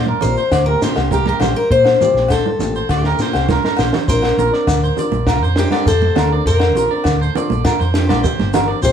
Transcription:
Already playing: fingered electric bass A#2, steel-string acoustic guitar D5
0.06 clean electric guitar A#4, high conga
0.21 fingered electric bass A#1, nylon-string guitar F3 A#3, steel-string acoustic guitar C5, low conga, shekere
0.25 nylon-string guitar C4 G4
0.37 clean electric guitar C5, shekere
0.52 fingered electric bass D2, clean electric guitar D5, kick, snare, low agogo, shekere
0.66 nylon-string guitar C4 G4, steel-string acoustic guitar A#4, clean electric guitar A#4
0.71 nylon-string guitar A#3
0.82 nylon-string guitar F3 A#3 C4 G4, steel-string acoustic guitar G4, clean electric guitar C5, snare, shekere
0.95 fingered electric bass C2, nylon-string guitar A#3 C4 G4, snare, low agogo
1.11 steel-string acoustic guitar G4, clean electric guitar A#4, kick, high conga, low conga, shekere
1.26 steel-string acoustic guitar G4, clean electric guitar A#4, snare, high conga
1.40 fingered electric bass A#1, clean electric guitar C5, snare, high conga, low conga, low agogo, shekere
1.56 steel-string acoustic guitar A#4
1.71 fingered electric bass A#2, clean electric guitar C5, steel-string acoustic guitar C5, kick, shekere
1.85 snare, low agogo
1.99 nylon-string guitar F3 A#3 C4 G4, clean electric guitar D5, high conga, low conga, shekere
2.14 fingered electric bass A#1, nylon-string guitar C4 G4, snare
2.19 nylon-string guitar A#3
2.28 steel-string acoustic guitar A4, clean electric guitar C5, kick, snare, low agogo, shekere
2.46 high conga
2.59 fingered electric bass A1, nylon-string guitar F3 A#3 C4 G4, snare, low conga, shekere
2.75 clean electric guitar C5, shekere
2.89 fingered electric bass D2, steel-string acoustic guitar G4, clean electric guitar D5, kick, snare, low agogo, shekere
3.03 nylon-string guitar A#3 C4 G4, clean electric guitar A#4, snare
3.17 nylon-string guitar F3 A#3 C4 G4, snare, shekere
3.22 clean electric guitar C5
3.33 fingered electric bass C2, nylon-string guitar A#3 C4 G4, snare, low agogo, shekere
3.49 steel-string acoustic guitar F4, clean electric guitar A#4, kick, snare, high conga, low conga, shekere
3.64 clean electric guitar A#4, snare, high conga
3.77 fingered electric bass A#1, clean electric guitar C5, snare, low conga, low agogo, shekere
3.93 snare, low conga
4.07 fingered electric bass A#1, nylon-string guitar F3 C4 D4 A#4, steel-string acoustic guitar A#4, clean electric guitar C5, kick, shekere
4.22 snare, low agogo
4.36 fingered electric bass A#1, nylon-string guitar F3 C4 D4 A#4, clean electric guitar A#4, low conga, shekere
4.51 nylon-string guitar C4 D4 A#4, clean electric guitar D5, snare
4.67 fingered electric bass D2, kick, snare, low agogo, shekere
4.83 clean electric guitar C5, shekere
4.95 nylon-string guitar F3 C4 D4 A#4, clean electric guitar D5, low conga, shekere
5.12 fingered electric bass A#1, high conga, shekere
5.27 steel-string acoustic guitar F4, clean electric guitar A#4, kick, snare, low agogo, shekere
5.42 fingered electric bass F2, clean electric guitar C5, shekere
5.56 nylon-string guitar F3 C4 D4 A#4, steel-string acoustic guitar G4, snare, shekere
5.71 nylon-string guitar C4 D4 A#4, clean electric guitar D5, snare, high conga, low agogo
5.86 fingered electric bass F2, steel-string acoustic guitar A4, clean electric guitar C5, kick, low conga, shekere
6.02 high conga
6.16 fingered electric bass D2, clean electric guitar A#4, snare, low conga, low agogo, shekere
6.31 nylon-string guitar C4 D4 A#4, clean electric guitar D5
6.46 fingered electric bass F2, steel-string acoustic guitar A#4, clean electric guitar C5, kick, shekere
6.59 snare, low agogo
6.75 fingered electric bass A#1, nylon-string guitar F3 C4 D4 A#4, clean electric guitar A#4, low conga, shekere
6.89 nylon-string guitar C4 D4 A#4, clean electric guitar D5
7.04 fingered electric bass D2, kick, snare, low agogo, shekere
7.21 steel-string acoustic guitar A4, clean electric guitar C5, shekere
7.35 nylon-string guitar F3 C4 D4 A#4, clean electric guitar D5, low conga, shekere
7.50 fingered electric bass A#1, high conga, shekere
7.64 steel-string acoustic guitar F4, clean electric guitar A#4, kick, snare, low agogo, shekere
7.80 fingered electric bass F2, clean electric guitar C5, shekere
7.94 nylon-string guitar F3 C4 D4 A#4, steel-string acoustic guitar G4, snare, shekere
8.09 fingered electric bass A#1, nylon-string guitar C4 D4 A#4, clean electric guitar D5, snare, high conga, low agogo, shekere
8.23 clean electric guitar C5, kick, low conga, shekere
8.39 fingered electric bass G1, snare, high conga
8.54 clean electric guitar A#4, snare, low conga, low agogo, shekere
8.67 nylon-string guitar D4 A#4, clean electric guitar D5
8.72 nylon-string guitar C4
8.82 fingered electric bass A#1, nylon-string guitar F3 C4 F4 G4, clean electric guitar C5, steel-string acoustic guitar C5, kick, shekere

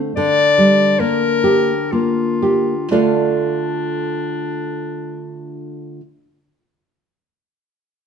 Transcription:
Already playing: nylon-string guitar D3 A3
0.16 nylon-string guitar D3, clarinet D5
0.58 nylon-string guitar G3
1.00 nylon-string guitar A#3, clarinet A#4
1.44 nylon-string guitar G4
1.92 nylon-string guitar A#3, clarinet F4
2.42 nylon-string guitar G4
2.91 nylon-string guitar D3 A3 F4 A4 D5 F5, clarinet D4

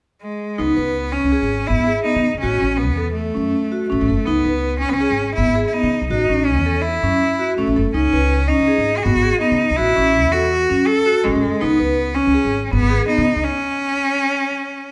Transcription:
0.22 cello G#3
0.58 upright bass C#2, cello B3, vibraphone D#4
0.77 upright bass C#2, vibraphone B4
1.12 cello C#4, vibraphone C#4
1.24 upright bass C#2
1.32 vibraphone G#4
1.42 upright bass G#1
1.67 upright bass G#1, vibraphone B3, cello E4
1.80 upright bass G#1
1.87 vibraphone G#4
2.03 vibraphone B3, cello D#4
2.16 upright bass C#3
2.34 upright bass C#2
2.40 upright bass A1, cello C#4, vibraphone F#4
2.61 upright bass A1, vibraphone C#4
2.71 cello C#4
2.77 cello B3
2.90 upright bass E2
2.97 vibraphone A4
3.13 cello A3
3.35 upright bass F#2, vibraphone C#4
3.72 vibraphone F#4
3.88 upright bass A1, cello A3, vibraphone C#4
4.01 upright bass A1
4.08 upright bass F#1, vibraphone A4
4.26 upright bass C#2, cello B3, vibraphone D#4
4.45 upright bass C#2, vibraphone B4
4.79 cello C#4, vibraphone C#4
4.89 upright bass C#2, cello B3 C#4
5.00 vibraphone G#4
5.10 upright bass G#1
5.35 upright bass G#1, vibraphone B3, cello E4
5.47 upright bass G#1
5.56 vibraphone G#4
5.67 cello E4
5.73 vibraphone B3, cello D#4
5.83 upright bass C#3
6.02 upright bass B1
6.10 upright bass A1, cello D#4, vibraphone F#4
6.29 upright bass A1, vibraphone C#4
6.45 cello C#4
6.57 upright bass E2
6.66 vibraphone A4
6.82 cello E4
7.03 upright bass F#2, vibraphone C#4
7.39 vibraphone F#4
7.56 upright bass A1, cello A3, vibraphone C#4
7.67 upright bass A1
7.76 upright bass F#1, vibraphone A4
7.94 upright bass C#2, cello C#4, vibraphone D#4
8.13 upright bass C#2, vibraphone B4
8.48 vibraphone C#4, cello D#4
8.59 upright bass C#2
8.68 vibraphone G#4
8.78 upright bass G#1
8.98 cello G#4
9.03 upright bass G#1, vibraphone B3, cello F#4
9.15 upright bass G#1
9.23 vibraphone G#4
9.40 vibraphone B3, cello D#4
9.51 upright bass C#3
9.70 upright bass C#2
9.76 upright bass A1, cello E4, vibraphone F#4
9.96 upright bass A1, vibraphone C#4
10.25 upright bass E2
10.32 cello F#4, vibraphone A4
10.70 upright bass F#2, vibraphone C#4
10.87 cello A4
11.06 vibraphone F#4
11.24 upright bass A1, cello G#3, vibraphone C#4
11.35 upright bass A1
11.43 upright bass F#1, vibraphone A4
11.61 upright bass C#2, cello B3, vibraphone D#4
11.80 upright bass C#2, vibraphone B4
12.15 cello C#4, vibraphone C#4
12.27 upright bass C#2
12.34 vibraphone G#4
12.45 upright bass G#1
12.65 cello C#4
12.71 upright bass G#1, cello B3, vibraphone B3
12.83 upright bass G#1
12.90 vibraphone G#4
13.08 vibraphone B3, cello D#4
13.18 upright bass C#3
13.36 upright bass C#2
13.44 cello C#4

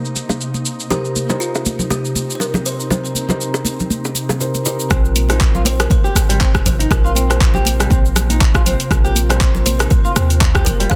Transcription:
Already playing: ambient pad C3 A#3 D#4, felt piano D#4 G4 A#4 C5
0.05 cabasa
0.16 muted conga, cabasa
0.29 high bongo, low bongo, high conga, cabasa
0.41 cabasa
0.54 muted conga, cabasa
0.66 cabasa
0.80 cabasa
0.90 ambient pad C4, felt piano D#4 G4 A#4 C5, kalimba G4, low bongo, muted conga, low conga, cabasa
1.05 cabasa
1.16 high conga, cabasa
1.29 felt piano D#4 G4 A#4 C5, low bongo, muted conga, cabasa
1.40 kalimba F4, cabasa
1.55 high bongo, cabasa
1.66 muted conga, high conga, cabasa
1.79 low conga, cabasa
1.90 kalimba G4, low bongo, high conga, cabasa
2.05 cabasa
2.15 muted conga, high conga, cabasa
2.30 cabasa
2.35 kalimba C5
2.40 kalimba A#4, low bongo, cabasa
2.54 high bongo, muted conga, low conga, cabasa
2.66 kalimba C5, cabasa
2.80 cabasa
2.90 felt piano D#4 G4 A#4 C5, low bongo, muted conga, low conga, cabasa
3.05 cabasa
3.15 high conga, cabasa
3.29 felt piano D#4 G4 A#4 C5, low bongo, muted conga, low conga, cabasa
3.41 cabasa
3.54 high bongo, cabasa
3.65 muted conga, high conga, cabasa
3.80 low conga, cabasa
3.90 high conga, cabasa
4.05 high bongo, cabasa
4.15 muted conga, cabasa
4.29 high bongo, low bongo, high conga, cabasa
4.41 felt piano D#4 G4 A#4 C5, cabasa
4.55 muted conga, cabasa
4.66 felt piano D#4 G4 A#4 C5, cabasa
4.80 cabasa
4.90 808-style bass A#1, ambient pad C3 A#3 F4, nylon-string guitar C4, felt piano F4, kick, cross-stick, closed hi-hat, muted conga, cabasa
5.05 cabasa
5.16 open hi-hat, high conga, cabasa
5.29 felt piano C4 F4 A#4 C5, nylon-string guitar D#4, cross-stick, closed hi-hat, muted conga, cabasa
5.41 kick, clap, closed hi-hat, cabasa
5.55 nylon-string guitar F4, low conga, cabasa
5.65 nylon-string guitar C4, kalimba C5, open hi-hat, muted conga, high conga, cabasa
5.80 kalimba A#4, cross-stick, closed hi-hat, cabasa
5.90 kalimba C5, kick, closed hi-hat, high conga, cabasa
6.04 nylon-string guitar G4, cabasa
6.15 808-style bass G#1, cross-stick, open hi-hat, muted conga, high conga, cabasa
6.29 nylon-string guitar G3, closed hi-hat, cabasa
6.40 nylon-string guitar C4, kick, clap, closed hi-hat, cabasa
6.55 kick, cross-stick, muted conga, cabasa
6.66 808-style bass G#1, kalimba C5, open hi-hat, low conga, cabasa
6.79 nylon-string guitar D#4, closed hi-hat, cabasa
6.91 808-style bass A#1, felt piano C4 F4 A#4 C5, kalimba A#4, kick, cross-stick, closed hi-hat, muted conga, cabasa
7.04 nylon-string guitar F4, cabasa
7.15 nylon-string guitar C4, open hi-hat, high conga, cabasa
7.30 felt piano C4 F4 A#4 C5, cross-stick, closed hi-hat, muted conga, cabasa
7.41 kick, clap, closed hi-hat, cabasa
7.54 nylon-string guitar G4, low conga, cabasa
7.65 open hi-hat, muted conga, high conga, cabasa
7.80 nylon-string guitar G3, cross-stick, closed hi-hat, cabasa
7.90 808-style bass A#1, nylon-string guitar C4, kick, closed hi-hat, high conga, cabasa
8.05 cabasa
8.16 cross-stick, open hi-hat, muted conga, low conga, cabasa
8.30 nylon-string guitar D#4, closed hi-hat, high conga, cabasa
8.41 kick, clap, closed hi-hat, cabasa
8.54 nylon-string guitar F4, kick, cross-stick, muted conga, cabasa
8.66 nylon-string guitar C4, open hi-hat, low conga, cabasa
8.80 closed hi-hat, cabasa
8.91 808-style bass A#1, felt piano C4 F4 A#4 C5, kick, cross-stick, closed hi-hat, muted conga, cabasa
9.04 nylon-string guitar G4, cabasa
9.16 open hi-hat, high conga, cabasa
9.29 nylon-string guitar G3, felt piano C4 F4 A#4 C5, cross-stick, closed hi-hat, muted conga, cabasa
9.41 nylon-string guitar C4, kick, clap, closed hi-hat, cabasa
9.55 low conga, cabasa
9.66 kalimba C5, open hi-hat, muted conga, high conga, cabasa
9.79 nylon-string guitar D#4, kalimba A#4, cross-stick, closed hi-hat, cabasa
9.90 kalimba C5, kick, closed hi-hat, high conga, cabasa
10.05 nylon-string guitar F4, cabasa
10.16 808-style bass D#2, nylon-string guitar C4, cross-stick, open hi-hat, muted conga, high conga, cabasa
10.30 closed hi-hat, cabasa
10.41 kick, clap, closed hi-hat, cabasa
10.54 nylon-string guitar G4, kick, cross-stick, muted conga, cabasa
10.65 808-style bass F1, kalimba A#4, open hi-hat, low conga, cabasa
10.80 nylon-string guitar G3, closed hi-hat, cabasa
10.90 808-style bass A#1, nylon-string guitar C4, felt piano C4 F4 A#4 C5, kalimba F5, kick, cross-stick, closed hi-hat, muted conga, cabasa

